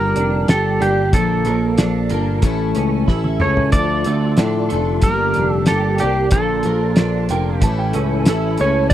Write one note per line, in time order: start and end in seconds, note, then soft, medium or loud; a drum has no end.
0.00 0.13 G1 medium
0.00 0.49 G2 medium
0.00 0.49 D3 medium
0.00 0.49 G3 medium
0.00 0.49 A#3 medium
0.00 0.50 D4 medium
0.00 0.50 G4 medium
0.00 0.50 A#4 loud
0.16 0.46 F1 medium
0.16 0.79 D4 medium
0.16 closed hi-hat medium
0.48 0.79 G1 medium
0.48 0.82 G3 soft
0.48 0.82 A#3 medium
0.48 0.82 D4 medium
0.48 1.13 G4 medium
0.48 0.83 A4 loud
0.48 snare loud
0.48 closed hi-hat medium
0.53 0.81 G4 medium
0.81 1.11 G1 medium
0.81 1.14 G3 soft
0.81 1.14 A#3 soft
0.81 1.15 D4 medium
0.81 1.15 G4 medium
0.81 1.14 G4 medium
0.81 closed hi-hat medium
1.13 1.44 A#1 medium
1.13 1.46 A#2 medium
1.13 1.46 D3 medium
1.13 1.46 F3 medium
1.13 1.47 A#3 medium
1.13 1.46 D4 medium
1.13 3.05 A4 loud
1.13 kick loud
1.13 closed hi-hat medium
1.45 1.76 A#1 medium
1.45 1.79 D4 soft
1.45 closed hi-hat medium
1.49 1.79 F3 soft
1.49 1.80 A#3 soft
1.78 2.08 A#1 medium
1.78 2.12 F3 medium
1.78 2.43 D4 medium
1.78 snare loud
1.78 closed hi-hat medium
1.82 2.13 A#3 soft
1.82 2.12 D4 medium
2.10 2.41 G1 medium
2.10 2.44 D4 medium
2.10 closed hi-hat medium
2.14 2.43 F3 soft
2.14 2.44 A#3 soft
2.42 2.73 A1 loud
2.42 3.08 A2 medium
2.42 3.08 E3 medium
2.42 3.07 A3 medium
2.42 3.09 C#4 medium
2.42 3.09 E4 medium
2.42 3.09 A4 medium
2.42 kick medium
2.42 closed hi-hat medium
2.75 3.06 C#2 medium
2.75 3.39 C#4 medium
2.75 closed hi-hat medium
3.08 3.38 A1 medium
3.08 3.41 A3 medium
3.08 3.41 C#4 medium
3.08 3.40 E4 medium
3.08 kick medium
3.08 snare medium
3.12 3.38 A4 medium
3.24 high tom medium
3.40 3.71 C#2 medium
3.40 3.73 A3 soft
3.40 3.73 C#4 soft
3.40 3.73 E4 soft
3.40 3.73 A4 medium
3.40 3.72 C#5 medium
3.40 mid tom medium
3.57 floor tom medium
3.72 4.03 D2 medium
3.72 4.05 D3 medium
3.72 4.06 F3 medium
3.72 5.02 F3 medium
3.72 5.02 A3 medium
3.72 5.01 D4 medium
3.72 4.06 D4 medium
3.72 5.02 F4 medium
3.72 4.06 F4 medium
3.72 4.04 A4 medium
3.72 4.66 D5 loud
3.72 kick loud
3.72 closed hi-hat medium
4.04 4.36 D2 medium
4.04 4.68 A3 medium
4.04 4.39 F4 soft
4.04 4.38 A4 soft
4.04 closed hi-hat medium
4.09 4.39 D4 soft
4.37 4.69 A2 medium
4.37 4.71 F3 soft
4.37 4.71 D4 medium
4.37 snare medium
4.37 closed hi-hat medium
4.41 4.72 F4 medium
4.41 4.71 A4 soft
4.69 5.02 F1 medium
4.69 5.02 A3 medium
4.69 5.04 A4 medium
4.69 closed hi-hat soft
4.74 5.04 D4 soft
4.74 5.05 F4 soft
5.02 5.33 G1 medium
5.02 5.68 G2 medium
5.02 5.69 D3 medium
5.02 6.31 G3 medium
5.02 5.68 G3 medium
5.02 6.31 A#3 medium
5.02 5.69 A#3 medium
5.02 6.31 D4 medium
5.02 6.32 G4 medium
5.02 5.50 A#4 loud
5.02 kick medium
5.02 closed hi-hat medium
5.06 5.69 D4 medium
5.06 5.69 G4 medium
5.34 5.67 F1 medium
5.34 5.99 D4 medium
5.34 closed hi-hat medium
5.50 5.67 A4 loud
5.66 6.01 G3 medium
5.66 6.33 G4 medium
5.66 6.01 A4 medium
5.66 snare medium
5.66 closed hi-hat medium
5.71 5.99 G1 medium
5.71 6.01 A#3 medium
5.71 6.00 D4 medium
5.71 5.99 G4 medium
5.98 6.33 D4 soft
5.98 6.32 G4 medium
5.98 6.33 G4 medium
5.98 closed hi-hat medium
6.03 6.32 C2 medium
6.03 6.32 G3 soft
6.03 6.32 A#3 soft
6.31 6.63 A#1 loud
6.31 6.65 A#2 medium
6.31 6.65 D3 medium
6.31 7.61 F3 medium
6.31 6.65 F3 medium
6.31 7.61 A#3 medium
6.31 6.66 A#3 medium
6.31 7.61 D4 medium
6.31 6.65 D4 medium
6.31 7.61 F4 medium
6.31 7.57 A4 loud
6.31 kick loud
6.31 closed hi-hat medium
6.63 6.96 A#1 medium
6.63 6.98 D4 soft
6.63 closed hi-hat medium
6.67 6.95 F3 soft
6.67 6.95 A#3 soft
6.96 7.28 A#1 medium
6.96 7.29 F3 soft
6.96 7.30 A#3 medium
6.96 7.29 D4 medium
6.96 snare medium
6.96 closed hi-hat medium
7.29 7.60 F1 medium
7.29 7.64 F3 soft
7.29 7.63 A#3 soft
7.29 7.63 D4 medium
7.29 7.62 G5 medium
7.29 closed hi-hat medium
7.57 8.23 G4 loud
7.62 7.92 A1 medium
7.62 8.28 A2 medium
7.62 8.28 E3 medium
7.62 8.91 E3 medium
7.62 8.90 A3 medium
7.62 8.26 A3 medium
7.62 8.92 C#4 medium
7.62 8.28 C#4 medium
7.62 8.92 E4 medium
7.62 8.28 E4 medium
7.62 8.29 A4 medium
7.62 7.78 A5 medium
7.62 kick medium
7.62 closed hi-hat medium
7.79 7.94 G5 medium
7.93 8.25 C#2 medium
7.93 8.59 C#4 medium
7.93 8.26 A4 medium
7.93 closed hi-hat medium
8.26 8.58 A1 medium
8.26 8.60 A3 medium
8.26 8.61 C#4 medium
8.26 8.60 E4 medium
8.26 8.59 A4 loud
8.26 snare medium
8.26 closed hi-hat medium
8.31 8.60 A4 medium
8.57 8.90 C#2 medium
8.57 8.92 A4 medium
8.57 8.89 C#5 medium
8.57 closed hi-hat medium
8.62 8.91 A3 soft
8.62 8.93 C#4 medium
8.62 8.93 E4 medium
8.90 8.94 D5 loud
8.90 closed hi-hat medium